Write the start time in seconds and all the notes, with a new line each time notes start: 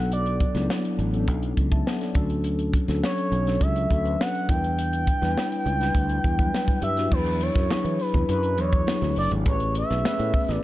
Already playing: B1 F#3 B3 D4 A4 F#5
0.12 D5, closed hi-hat
0.26 closed hi-hat
0.40 kick, closed hi-hat
0.55 C#2 F#3 B3 D4 E4, snare, closed hi-hat
0.70 snare
0.85 closed hi-hat
0.99 A1, closed hi-hat
1.13 F#3 B3 C#4 A4, closed hi-hat
1.20 D4
1.28 B1, kick, closed hi-hat
1.43 closed hi-hat
1.57 C#2, kick, closed hi-hat
1.72 E5 A5, kick, closed hi-hat
1.86 C#5 F#5, snare
2.01 A4 D5, snare, closed hi-hat
2.15 D2 F#3 C#4 D4 A4, kick, closed hi-hat
2.30 closed hi-hat
2.44 closed hi-hat
2.59 closed hi-hat
2.74 kick, closed hi-hat
2.88 D2 F#3 C#4 D4 A4, snare, closed hi-hat
3.04 C#5, snare
3.18 closed hi-hat
3.32 B1, closed hi-hat
3.46 F#3 C#4 D4 A4, snare, closed hi-hat
3.61 C#2 E5, kick, closed hi-hat
3.76 closed hi-hat
3.90 D2 E5, kick, closed hi-hat
4.04 F#3 C#4 D4 B4, closed hi-hat
4.21 F#5, snare
4.35 closed hi-hat
4.48 E2 G3 D4 E4 A#4 G5, kick, closed hi-hat
4.56 B4
4.64 closed hi-hat
4.78 closed hi-hat
4.93 closed hi-hat
5.07 kick, closed hi-hat
5.22 E2 G3 D4 E4 B4, snare, closed hi-hat
5.38 snare
5.52 closed hi-hat
5.66 C#2, closed hi-hat
5.79 G3 D4 E4 B4, snare, closed hi-hat
5.95 D2, kick, closed hi-hat
6.09 closed hi-hat
6.24 E2, kick, closed hi-hat
6.39 F#3 D4 E4 B4, kick, closed hi-hat
6.45 G3
6.54 snare
6.68 kick, closed hi-hat
6.82 G2 E5, closed hi-hat
6.97 G3 D4 E4 F#4, snare, closed hi-hat
7.11 E2 F#3 D4 G#4 B4, kick, crash, muted conga
7.26 closed hi-hat
7.40 C#5, closed hi-hat, muted conga
7.55 F#2, kick, snare, closed hi-hat
7.70 F#3 D4 E4 G#4, muted fretless electric bass stroke, snare, high conga
7.85 E3, closed hi-hat
8.00 B4, open hi-hat
8.14 E2, kick, closed hi-hat, low conga
8.28 F#2 F#3 D4 E4 B4, closed hi-hat, muted conga
8.43 closed hi-hat
8.58 E2 C#5, closed hi-hat, muted conga
8.72 kick, closed hi-hat
8.86 F#3 D4 E4 G#4, snare, high conga
9.02 D2, snare, closed hi-hat, high conga
9.16 F#1 D5, open hi-hat
9.31 G#1, closed hi-hat, high conga
9.45 A1 A3 C#4 G#4 B4 C#5, kick, closed hi-hat, muted conga
9.60 closed hi-hat
9.75 E5, closed hi-hat, muted conga
9.90 B1, snare, closed hi-hat
10.04 A3 B3 G#4 B4, snare, high conga
10.11 C#4
10.19 A2, closed hi-hat
10.34 kick, open hi-hat
10.48 A1, snare, closed hi-hat
10.55 D5